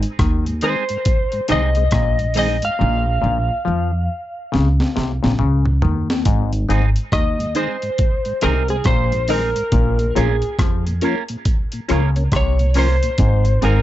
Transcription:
0.03 closed hi-hat
0.19 upright bass D#2, clav D#3, kick, cross-stick, closed hi-hat
0.46 tonewheel organ G#2, closed hi-hat
0.61 tonewheel organ D#3 G#3 C4, clean electric guitar G#3 C4 D#4 G#4, synth stab D#4 G#4 C5 D#5, lead electric guitar C5, closed hi-hat
0.89 tonewheel organ G#2, closed hi-hat
1.05 kick, closed hi-hat
1.32 tonewheel organ G#2, closed hi-hat
1.48 upright bass C2, clav C3, tonewheel organ D#3 G#3 C4, clean electric guitar G#3 C4 D#4 G#4, synth stab D#4 G#4 C5 D#5, lead electric guitar D#5, cross-stick, closed hi-hat
1.75 tonewheel organ G#3 C4, synth stab C5 D#5, closed hi-hat
1.91 upright bass A#1, clav A#2, kick, cross-stick, closed hi-hat
2.19 tonewheel organ G#2, closed hi-hat
2.34 tonewheel organ D#3 G#3 C4, clean electric guitar G#3 C4 D#4 G#4, synth stab D#4 G#4 C5 D#5, open hi-hat
2.39 lead electric guitar D#5
2.62 tonewheel organ G#2, lead electric guitar F5, closed hi-hat
2.79 upright bass A#1, clav A#2
3.22 upright bass A#1, clav A#2
3.65 upright bass F2, clav F3
4.52 upright bass C#2, clav C#3, snare
4.80 snare
4.96 upright bass C2, clav C3, snare
5.23 upright bass A#1, clav A#2, snare
5.39 upright bass C#2, clav C#3, mid tom
5.66 mid tom
5.82 upright bass D#2, clav D#3, floor tom
6.10 snare
6.25 upright bass G#1, clav G#2, kick, closed hi-hat
6.53 tonewheel organ G#2, closed hi-hat
6.69 upright bass G#1, clav G#2, tonewheel organ D#3 G#3 C4, clean electric guitar G#3 C4 D#4 G#4, synth stab D#4 G#4 C5 D#5, closed hi-hat
6.96 closed hi-hat
7.12 upright bass D#2, clav D#3, lead electric guitar D#5, kick, cross-stick, closed hi-hat
7.39 tonewheel organ G#2, closed hi-hat
7.55 tonewheel organ D#3 G#3 C4, clean electric guitar G#3 C4 D#4 G#4, synth stab D#4 G#4 C5 D#5, lead electric guitar C5, closed hi-hat
7.82 tonewheel organ G#2, closed hi-hat
7.98 kick, closed hi-hat
8.25 tonewheel organ G#2, closed hi-hat
8.41 upright bass C2, clav C3, tonewheel organ D#3 G#3 C4, clean electric guitar G#3 C4 D#4 G#4, synth stab D#4 G#4 C5 D#5, lead electric guitar A#4, cross-stick, closed hi-hat
8.68 tonewheel organ G#3 C4, lead electric guitar G#4, synth stab C5 D#5, closed hi-hat
8.84 upright bass A#1, clav A#2, lead electric guitar C5, kick, cross-stick, closed hi-hat
9.12 tonewheel organ G#2, closed hi-hat
9.28 tonewheel organ D#3 G#3 C4, clean electric guitar G#3 C4 D#4 G#4, synth stab D#4 G#4 C5 D#5, lead electric guitar A#4, open hi-hat
9.56 tonewheel organ G#2, closed hi-hat
9.72 upright bass A#1, clav A#2, kick, closed hi-hat
9.99 tonewheel organ A#2, closed hi-hat
10.15 upright bass A#1, clav A#2, tonewheel organ F3 A#3 C#4, clean electric guitar A#3 C#4 F4 A#4, synth stab C#4 F4 A#4 C#5, lead electric guitar G#4, closed hi-hat
10.42 closed hi-hat
10.59 upright bass F2, clav F3, kick, cross-stick, closed hi-hat
10.87 tonewheel organ A#2, closed hi-hat
11.01 tonewheel organ F3 A#3 C#4, clean electric guitar A#3 C#4 F4 A#4, synth stab C#4 F4 A#4 C#5, closed hi-hat
11.28 tonewheel organ A#2, closed hi-hat
11.45 kick, closed hi-hat
11.72 tonewheel organ A#2, closed hi-hat
11.88 upright bass C#2, clav C#3, tonewheel organ F3 A#3 C#4, clean electric guitar A#3 C#4 F4 A#4, synth stab C#4 F4 A#4 C#5, cross-stick, closed hi-hat
12.16 tonewheel organ A#3 C#4, synth stab A#4 C#5, muted clean electric guitar stroke, closed hi-hat
12.32 upright bass C2, clav C3, kick, cross-stick, closed hi-hat
12.36 lead electric guitar C#5
12.59 tonewheel organ A#2, closed hi-hat
12.74 tonewheel organ F3 A#3 C#4, clean electric guitar A#3 C#4 F4 A#4, synth stab C#4 F4 A#4 C#5, open hi-hat
12.79 lead electric guitar C5
13.03 tonewheel organ A#2, closed hi-hat
13.18 upright bass G#1, clav G#2, kick, closed hi-hat
13.45 tonewheel organ G#2, closed hi-hat
13.62 upright bass G#1, clav G#2, tonewheel organ D#3 G#3 C4, clean electric guitar G#3 C4 D#4 G#4, synth stab C4 D#4 G#4 C5, lead electric guitar A#4, closed hi-hat

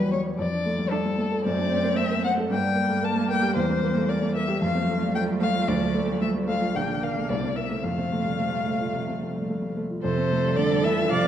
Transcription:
Already playing: grand piano E2 G3 G4, cello G3, viola G4, violin B4
0.00 grand piano F#3
0.12 grand piano G3, violin C#5
0.26 grand piano C#5
0.38 grand piano F2, violin D5
0.52 grand piano D4
0.66 grand piano A3
0.79 grand piano G3
0.91 cello A3, grand piano A3, viola D4, violin A4
1.05 grand piano G3
1.18 grand piano A3
1.32 grand piano A4
1.44 grand piano F#2, cello A3, viola C4, violin D5
1.59 grand piano D4
1.72 grand piano C4
1.84 grand piano A#3
1.96 grand piano C4, violin E5
2.11 grand piano A#3
2.23 grand piano C4, violin F#5
2.38 grand piano A4
2.50 grand piano G2, cello G3, viola A#3, violin G5
2.63 grand piano D4
2.76 grand piano A#3
2.89 grand piano A3
3.03 grand piano A#3, violin A5
3.15 grand piano A3
3.29 grand piano A#3, violin G5
3.42 grand piano G4
3.56 grand piano E2, violin C5
3.70 grand piano C4
3.83 grand piano A#3
3.96 grand piano A3
4.09 grand piano A#3, violin D5
4.22 grand piano A3
4.35 grand piano A#3, violin E5
4.48 grand piano G4
4.62 grand piano F2, cello F3, viola A3, violin F5
4.75 grand piano C4
4.88 grand piano A3
5.02 grand piano G3
5.15 grand piano A3, violin G5
5.29 grand piano G3
5.41 grand piano A3, violin F5
5.54 grand piano F4
5.68 grand piano D2, violin D5
5.80 grand piano D4
5.94 grand piano A3
6.08 grand piano G3
6.21 grand piano A3, violin E5
6.34 grand piano G3
6.47 grand piano A3, violin F5
6.61 grand piano F4
6.75 grand piano A#1, cello D3, viola A#3, violin G5
6.88 grand piano D4
7.03 grand piano A#3, violin F5
7.16 grand piano A3
7.29 grand piano C2, cello C3, violin D5
7.43 grand piano C4
7.56 grand piano A#3, violin E5
7.71 grand piano A3
7.83 grand piano F2, viola A3, violin F5
7.98 grand piano C4
8.12 grand piano A3
8.25 grand piano G3
8.40 grand piano A3
8.53 grand piano G3
8.67 grand piano A3
8.81 grand piano F4
8.94 grand piano C3
9.08 grand piano C4
9.22 grand piano A3
9.35 grand piano G3
9.49 grand piano A3
9.62 grand piano G3
9.77 grand piano A3
9.90 grand piano F4
10.03 grand piano F2, cello C3, viola A4, violin C5
10.18 grand piano C4
10.32 grand piano A3
10.45 grand piano G3
10.57 cello D3, grand piano A3, violin D5
10.71 grand piano G3
10.83 cello E3, grand piano A3, violin E5
10.98 grand piano F4
11.09 grand piano C3, cello F3, viola D5, violin F5
11.25 grand piano C4

